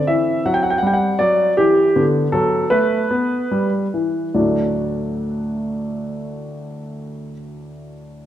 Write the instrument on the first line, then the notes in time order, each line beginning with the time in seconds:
grand piano
Already playing: C4
0.07 E3 E5
0.46 F#3 F#5
0.54 G5
0.63 F#5
0.70 G5
0.78 F#5
0.83 G3
0.87 G5
0.93 F#5
1.19 F#3 D5
1.57 E3 G4
1.96 D3 B3
2.32 F#3 A4
2.70 A3 B4
3.10 B3
3.51 G3
3.94 E3
4.34 D2 A2 F#3 A3 D4 F#4 D5